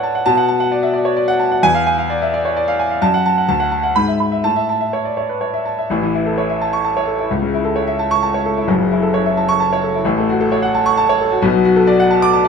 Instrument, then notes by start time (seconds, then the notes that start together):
grand piano
Already playing: A2 B4 C#5 D5 F#5 A5
0.03 A5
0.15 F#5
0.26 B2 A5
0.37 F#5
0.48 A5
0.60 F#5
0.72 D5
0.83 E5
0.93 D5
1.05 C#5
1.16 D5
1.28 F#5
1.40 A5
1.51 F#5
1.63 E2 G#5
1.74 F5
1.87 G#5
1.98 F5
2.10 D5
2.22 E5
2.34 D5
2.45 C#5
2.56 D5
2.68 F5
2.79 G#5
2.90 F5
3.02 F#2 A5
3.14 F#5
3.26 A5
3.37 F#5
3.49 D2 A5
3.60 F#5
3.72 A5
3.83 F#5
3.96 G#2 B5
4.08 E5
4.20 B5
4.32 E5
4.44 A2 A5
4.56 E5
4.69 A5
4.81 E5
4.93 C#5
5.05 D5
5.17 C#5
5.29 B4
5.41 C#5
5.54 E5
5.65 A5
5.78 E5
5.90 A1 A2
6.03 E3
6.14 E4
6.26 A4
6.38 C#5
6.50 E5
6.61 A5
6.73 C#6
6.84 A5
6.97 C#5
7.07 A4
7.19 E4
7.31 C#2
7.42 C#3
7.54 E4
7.64 A4
7.76 C#5
7.87 E5
7.99 A5
8.11 C#6
8.23 A5
8.34 C#5
8.46 A4
8.57 E4
8.67 F#1 F#2
8.79 C#3
8.91 E4
9.02 A4
9.14 C#5
9.26 E5
9.37 A5
9.49 C#6
9.60 A5
9.73 C#5
9.84 A4
9.94 E4
10.05 A1 A2
10.18 A3
10.30 F#4
10.41 A4
10.52 C#5
10.62 F#5
10.75 A5
10.86 C#6
10.97 A5
11.09 C#5
11.21 A4
11.32 F#4
11.42 B1 B2
11.54 F#3
11.65 F#4
11.76 A4
11.87 D5
12.00 F#5
12.11 A5
12.22 D6
12.33 A5
12.45 D5